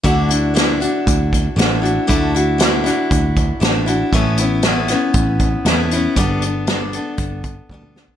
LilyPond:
<<
  \new Staff \with { instrumentName = "Steel-string acoustic guitar" } { \time 4/4 \key d \major \tempo 4 = 118 <d a d' e' fis'>8 <d' e' fis'>8 <a d' e' fis'>8 <d' e' fis'>4. <a d' e' fis'>8 <d' e' fis'>8 | <d a d' e' fis'>8 <d' e' fis'>8 <a d' e' fis'>8 <d' e' fis'>4. <a d' e' fis'>8 <d' e' fis'>8 | <a, a b cis' e'>8 <b cis' e'>8 <a b cis' e'>8 <b cis' e'>4. <a b cis' e'>8 <b cis' e'>8 | <g b d' a'>8 <b d' a'>8 <g b d' a'>8 <b d' a'>4. <g b d' a'>8 <b d' a'>8 | }
  \new Staff \with { instrumentName = "Picked electric bass" } { \clef bass \time 4/4 \key d \major d,2 d,4 a,,4 | d,2 d,4 a,,4 | a,,2 a,,4 e,4 | g,,2 g,,4 d,4 | }
  \new DrumStaff \with { instrumentName = "Drums" } \drummode { \time 4/4 <hh bd>8 hh8 <hh sn>8 hh8 <hh bd>8 <hh bd>8 <hh sn>8 hh8 | <hh bd>8 hh8 <hh sn>8 <hh sn>8 <hh bd>8 <hh bd>8 <hh sn>8 hh8 | <hh bd>8 hh8 <hh sn>8 <hh sn>8 <hh bd>8 <hh bd>8 <hh sn>8 hh8 | <hh bd>8 hh8 <hh sn>8 hh8 <hh bd>8 <hh bd>8 bd16 toml16 sn16 bd16 | }
>>